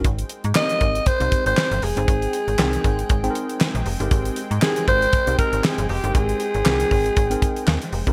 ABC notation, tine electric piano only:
X:1
M:4/4
L:1/16
Q:"Swing 16ths" 1/4=118
K:Ab
V:1 name="Tine electric piano"
z4 [B,CEGB]3 z2 [CEGc]4 z2 [CEcg]- | [CEcg]2 z2 [CEBg]3 z2 [CEABg]4 z2 [CEGB]- | [CEGB]2 z2 [CEGB]3 z2 [CEGB]4 z2 [CEGB]- | [CEGB]2 z2 [CEBg]3 z2 [CEBg]4 z2 [CEGB] |]